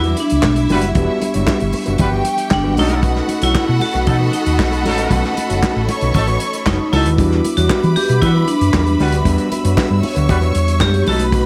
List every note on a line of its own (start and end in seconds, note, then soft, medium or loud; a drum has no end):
0.00 0.13 E2 loud
0.00 0.91 G3 medium
0.00 2.73 G3 medium
0.00 0.91 B3 medium
0.00 0.92 D4 medium
0.00 1.95 E4 medium
0.00 0.92 F#4 medium
0.00 1.95 E5 medium
0.00 2.73 E5 medium
0.00 0.94 D6 medium
0.00 closed hi-hat soft
0.05 0.17 G3 medium
0.05 0.18 D4 medium
0.05 0.18 F#4 medium
0.05 0.18 B4 medium
0.17 0.67 D4 medium
0.17 muted clean electric guitar stroke soft
0.17 closed hi-hat medium
0.30 0.42 C#2 medium
0.30 muted clean electric guitar stroke soft
0.30 closed hi-hat medium
0.43 0.65 B1 medium
0.43 kick loud
0.43 snare loud
0.43 clap loud
0.43 high conga loud
0.56 muted clean electric guitar stroke medium
0.56 closed hi-hat soft
0.69 0.91 F#1 medium
0.69 0.86 G3 medium
0.69 0.91 G3 medium
0.69 0.84 D4 medium
0.69 0.86 F#4 medium
0.69 0.83 F#4 medium
0.69 0.86 B4 loud
0.69 0.82 B4 medium
0.69 open hi-hat medium
0.69 high conga loud
0.82 muted clean electric guitar stroke soft
0.82 closed hi-hat medium
0.94 1.06 E1 loud
0.94 2.73 G3 medium
0.94 1.20 G3 medium
0.94 2.73 B3 medium
0.94 2.74 D4 medium
0.94 1.20 D4 medium
0.94 1.20 F#4 medium
0.94 2.74 G4 medium
0.94 1.21 B4 medium
0.94 2.76 C#6 medium
0.94 kick loud
0.94 closed hi-hat medium
1.21 muted clean electric guitar stroke soft
1.21 closed hi-hat medium
1.21 muted conga medium
1.34 1.46 F#1 medium
1.34 1.46 G3 medium
1.34 1.46 D4 medium
1.34 1.47 F#4 medium
1.34 1.48 C#5 medium
1.34 closed hi-hat medium
1.47 1.68 G3 medium
1.47 1.61 D4 medium
1.47 1.60 F#4 medium
1.47 1.59 B4 medium
1.47 kick loud
1.47 snare loud
1.47 clap loud
1.47 high conga medium
1.60 1.72 G1 loud
1.60 muted clean electric guitar stroke soft
1.60 closed hi-hat soft
1.73 muted clean electric guitar stroke soft
1.73 open hi-hat medium
1.73 muted conga medium
1.86 1.98 F#1 medium
1.86 1.97 G3 medium
1.86 1.98 D4 medium
1.86 1.99 F#4 medium
1.86 1.99 B4 medium
1.86 closed hi-hat soft
1.98 2.21 G1 medium
1.98 2.08 G3 medium
1.98 2.08 F#4 medium
1.98 2.76 G4 medium
1.98 2.08 B4 medium
1.98 2.75 G5 loud
1.98 muted clean electric guitar stroke soft
1.98 kick loud
1.98 closed hi-hat medium
1.98 muted conga medium
1.98 low conga medium
2.11 2.23 G3 medium
2.11 2.24 D4 medium
2.11 2.25 F#4 medium
2.11 2.25 B4 medium
2.25 muted clean electric guitar stroke soft
2.25 closed hi-hat medium
2.37 muted clean electric guitar stroke soft
2.37 closed hi-hat soft
2.50 2.77 G1 loud
2.50 2.79 D4 medium
2.50 muted clean electric guitar stroke soft
2.50 kick loud
2.50 snare loud
2.50 clap loud
2.50 high conga loud
2.64 2.76 G3 medium
2.64 2.77 D4 medium
2.64 2.77 F#4 medium
2.64 2.77 B4 medium
2.76 3.19 B1 loud
2.76 3.00 F#3 medium
2.76 4.80 A3 medium
2.76 4.81 C#4 medium
2.76 3.00 D#4 loud
2.76 3.39 D#4 medium
2.76 5.84 F#4 medium
2.76 4.81 F#4 medium
2.76 7.14 A4 loud
2.76 2.99 A4 loud
2.76 7.14 D#5 medium
2.76 4.81 D#5 medium
2.76 5.84 F#5 loud
2.76 7.14 B5 loud
2.76 muted clean electric guitar stroke soft
2.76 open hi-hat medium
2.76 high conga medium
2.89 muted clean electric guitar stroke soft
2.89 closed hi-hat soft
3.02 3.27 A3 medium
3.02 3.27 D#4 medium
3.02 3.27 F#4 medium
3.02 3.27 B4 loud
3.02 kick loud
3.02 closed hi-hat medium
3.02 muted conga soft
3.16 snare soft
3.29 muted clean electric guitar stroke soft
3.29 closed hi-hat medium
3.29 muted conga medium
3.42 3.53 B1 loud
3.42 3.54 A3 medium
3.42 3.55 D#4 medium
3.42 3.83 E4 loud
3.42 3.56 F#4 medium
3.42 3.57 C#5 medium
3.42 closed hi-hat medium
3.55 3.76 A3 medium
3.55 3.69 D#4 medium
3.55 3.68 F#4 medium
3.55 3.67 B4 loud
3.55 kick loud
3.55 snare loud
3.55 clap loud
3.55 high conga medium
3.69 3.79 B2 medium
3.69 muted clean electric guitar stroke soft
3.81 4.08 F#4 loud
3.81 muted clean electric guitar stroke soft
3.81 open hi-hat medium
3.81 muted conga medium
3.94 4.05 B1 medium
3.94 4.06 A3 medium
3.94 4.06 D#4 medium
3.94 4.07 F#4 medium
3.94 4.07 B4 medium
3.94 closed hi-hat soft
4.07 4.29 B2 loud
4.07 4.15 F#3 medium
4.07 4.15 D#4 medium
4.07 4.33 D#4 loud
4.07 4.15 A4 loud
4.07 kick loud
4.07 closed hi-hat medium
4.07 muted conga medium
4.07 low conga medium
4.20 4.32 A3 medium
4.20 4.33 D#4 medium
4.20 4.33 F#4 medium
4.20 4.34 B4 medium
4.33 4.82 D#4 medium
4.33 muted clean electric guitar stroke soft
4.33 closed hi-hat medium
4.46 4.57 D#2 loud
4.46 muted clean electric guitar stroke soft
4.46 closed hi-hat medium
4.59 4.86 B1 medium
4.59 4.80 A3 medium
4.59 4.72 D#4 medium
4.59 4.72 F#4 medium
4.59 4.71 B4 medium
4.59 kick loud
4.59 snare loud
4.59 clap medium
4.59 high conga medium
4.72 muted clean electric guitar stroke medium
4.72 closed hi-hat soft
4.83 5.06 A1 loud
4.83 5.18 F#3 loud
4.83 6.87 A3 medium
4.83 6.88 C#4 medium
4.83 5.18 D#4 loud
4.83 6.88 D#4 medium
4.83 6.89 F#4 medium
4.83 5.18 A4 loud
4.83 open hi-hat medium
4.83 high conga loud
4.98 5.09 A3 medium
4.98 5.10 D#4 medium
4.98 5.10 F#4 medium
4.98 5.11 B4 medium
4.98 closed hi-hat medium
5.10 5.22 B1 loud
5.10 5.34 A3 medium
5.10 5.35 D#4 medium
5.10 5.35 F#4 loud
5.10 5.35 B4 medium
5.10 kick loud
5.10 closed hi-hat medium
5.10 muted conga soft
5.24 snare soft
5.36 muted clean electric guitar stroke soft
5.36 closed hi-hat medium
5.36 muted conga medium
5.49 5.61 F#1 medium
5.49 5.62 A3 medium
5.49 5.63 D#4 medium
5.49 5.63 F#4 medium
5.49 5.65 C#5 medium
5.49 closed hi-hat medium
5.63 5.83 A3 loud
5.63 5.76 D#4 medium
5.63 5.75 F#4 medium
5.63 5.74 B4 loud
5.63 kick loud
5.63 snare loud
5.63 clap loud
5.63 high conga medium
5.76 5.87 A1 medium
5.76 muted clean electric guitar stroke soft
5.88 6.90 C#5 medium
5.88 6.90 C#6 loud
5.88 muted clean electric guitar stroke soft
5.88 closed hi-hat medium
5.88 muted conga medium
6.01 6.12 B1 medium
6.01 6.14 A3 soft
6.01 6.14 D#4 medium
6.01 6.15 F#4 medium
6.01 6.15 B4 medium
6.01 closed hi-hat soft
6.14 6.36 A1 medium
6.14 6.23 F#3 medium
6.14 6.23 D#4 medium
6.14 6.23 A4 loud
6.14 muted clean electric guitar stroke soft
6.14 kick loud
6.14 closed hi-hat medium
6.14 muted conga medium
6.14 low conga medium
6.27 6.40 A3 medium
6.27 6.40 D#4 medium
6.27 6.41 F#4 medium
6.27 6.41 B4 medium
6.27 closed hi-hat soft
6.40 muted clean electric guitar stroke soft
6.40 closed hi-hat medium
6.53 muted clean electric guitar stroke soft
6.53 closed hi-hat medium
6.66 6.77 F#1 medium
6.66 6.87 A3 medium
6.66 6.93 D#4 medium
6.66 6.80 D#4 medium
6.66 6.80 F#4 medium
6.66 6.79 B4 medium
6.66 kick loud
6.66 snare loud
6.66 clap loud
6.66 high conga loud
6.80 muted clean electric guitar stroke soft
6.92 7.03 C#2 loud
6.92 7.09 F#3 medium
6.92 7.09 D#4 medium
6.92 7.59 E4 medium
6.92 7.09 A4 loud
6.92 muted clean electric guitar stroke soft
6.92 open hi-hat medium
6.92 high conga loud
7.06 7.19 D#2 medium
7.06 7.18 A3 medium
7.06 7.19 D#4 medium
7.06 7.19 F#4 medium
7.06 7.19 B4 medium
7.06 closed hi-hat medium
7.17 7.39 E2 loud
7.17 9.20 G3 medium
7.17 11.02 G3 medium
7.17 7.42 G3 medium
7.17 9.21 B3 medium
7.17 9.21 D4 medium
7.17 7.42 D4 loud
7.17 9.22 F#4 medium
7.17 7.43 F#4 medium
7.17 9.99 B4 medium
7.17 7.43 B4 medium
7.17 11.02 E5 medium
7.17 9.99 B5 medium
7.17 9.23 D6 medium
7.17 kick loud
7.17 closed hi-hat medium
7.32 snare soft
7.45 muted clean electric guitar stroke soft
7.45 closed hi-hat medium
7.45 muted conga medium
7.57 7.68 E2 loud
7.57 7.69 G3 medium
7.57 7.69 D4 medium
7.57 7.97 F#4 loud
7.57 7.70 F#4 medium
7.57 7.72 C#5 medium
7.57 closed hi-hat medium
7.70 7.90 G3 loud
7.70 7.84 D4 loud
7.70 7.83 F#4 loud
7.70 7.82 B4 medium
7.70 muted fingered electric bass stroke medium
7.70 kick loud
7.70 snare loud
7.70 clap loud
7.70 high conga medium
7.83 7.94 E3 medium
7.83 muted clean electric guitar stroke soft
7.83 closed hi-hat soft
7.96 8.20 G4 loud
7.96 muted clean electric guitar stroke medium
7.96 open hi-hat medium
7.96 muted conga medium
8.09 8.20 B2 loud
8.09 8.21 G3 medium
8.09 8.22 D4 medium
8.09 8.22 F#4 medium
8.09 8.22 B4 medium
8.09 closed hi-hat soft
8.22 8.43 E3 loud
8.22 8.30 G3 medium
8.22 8.48 E4 loud
8.22 8.30 F#4 loud
8.22 8.30 B4 medium
8.22 kick loud
8.22 closed hi-hat medium
8.22 muted conga medium
8.22 low conga medium
8.34 8.46 G3 medium
8.34 8.47 D4 medium
8.34 8.47 F#4 medium
8.34 8.48 B4 medium
8.47 8.96 D4 medium
8.47 muted clean electric guitar stroke soft
8.47 closed hi-hat medium
8.61 8.71 F#2 medium
8.61 muted clean electric guitar stroke medium
8.61 closed hi-hat soft
8.73 8.95 E2 loud
8.73 8.94 G3 medium
8.73 8.87 D4 medium
8.73 8.86 F#4 loud
8.73 8.85 B4 loud
8.73 kick loud
8.73 snare loud
8.73 clap loud
8.73 high conga loud
8.86 muted clean electric guitar stroke medium
8.86 closed hi-hat soft
8.99 9.21 D2 medium
8.99 9.16 G3 medium
8.99 9.16 F#4 loud
8.99 9.16 B4 loud
8.99 muted clean electric guitar stroke soft
8.99 open hi-hat medium
8.99 high conga loud
9.12 9.24 G3 medium
9.12 9.25 D4 medium
9.12 9.25 F#4 medium
9.12 9.26 B4 medium
9.12 closed hi-hat soft
9.24 9.36 E2 loud
9.24 10.77 G3 medium
9.24 9.49 G3 medium
9.24 10.77 B3 medium
9.24 9.49 D4 medium
9.24 10.78 D4 medium
9.24 9.50 F#4 loud
9.24 10.78 F#4 medium
9.24 9.50 B4 medium
9.24 11.04 E6 medium
9.24 kick loud
9.24 closed hi-hat medium
9.38 closed hi-hat soft
9.52 muted clean electric guitar stroke soft
9.52 closed hi-hat medium
9.52 muted conga medium
9.64 9.75 F#2 loud
9.64 9.76 G3 soft
9.64 9.77 D4 medium
9.64 9.77 F#4 soft
9.64 9.79 C#5 medium
9.64 closed hi-hat medium
9.78 9.98 G3 medium
9.78 9.91 D4 loud
9.78 9.90 F#4 loud
9.78 9.89 B4 medium
9.78 kick loud
9.78 snare loud
9.78 clap medium
9.78 high conga medium
9.90 10.01 G2 medium
9.90 muted clean electric guitar stroke soft
10.03 11.04 C#5 medium
10.03 11.04 C#6 medium
10.03 muted clean electric guitar stroke soft
10.03 open hi-hat medium
10.03 muted conga medium
10.15 10.27 D2 medium
10.15 10.27 G3 medium
10.15 10.28 D4 medium
10.15 10.29 F#4 medium
10.15 10.29 B4 medium
10.15 closed hi-hat soft
10.29 10.50 E2 loud
10.29 10.37 G3 medium
10.29 10.37 F#4 loud
10.29 10.37 B4 medium
10.29 kick loud
10.29 closed hi-hat medium
10.29 muted conga medium
10.29 low conga medium
10.41 10.53 G3 medium
10.41 10.53 D4 medium
10.41 10.54 F#4 medium
10.41 10.54 B4 medium
10.41 closed hi-hat soft
10.55 10.81 E2 loud
10.55 closed hi-hat medium
10.67 muted clean electric guitar stroke soft
10.67 closed hi-hat soft
10.79 11.02 F#2 loud
10.79 11.00 G3 medium
10.79 11.06 G3 soft
10.79 11.06 B3 soft
10.79 10.93 D4 medium
10.79 11.06 D4 soft
10.79 10.92 F#4 medium
10.79 11.07 F#4 medium
10.79 11.07 G4 loud
10.79 10.92 B4 loud
10.79 kick loud
10.79 snare loud
10.79 clap loud
10.79 high conga loud
10.93 muted clean electric guitar stroke medium
10.93 closed hi-hat soft
11.05 11.46 B1 loud
11.05 11.23 F#3 medium
11.05 11.46 A3 medium
11.05 11.46 C#4 medium
11.05 11.23 D#4 medium
11.05 11.13 F4 medium
11.05 11.46 F#4 loud
11.05 11.23 A4 loud
11.05 11.46 B4 medium
11.05 11.46 D#5 medium
11.05 11.46 B5 loud
11.05 muted clean electric guitar stroke soft
11.05 open hi-hat medium
11.05 high conga loud
11.15 11.46 F#4 medium
11.15 11.32 B4 medium
11.19 11.30 A3 medium
11.19 11.31 D#4 medium
11.19 11.31 F#4 medium
11.19 closed hi-hat medium
11.31 11.46 A3 medium
11.31 11.46 D#4 medium
11.31 11.46 F#4 medium
11.31 11.46 B4 loud
11.31 kick loud
11.31 closed hi-hat medium
11.31 muted conga soft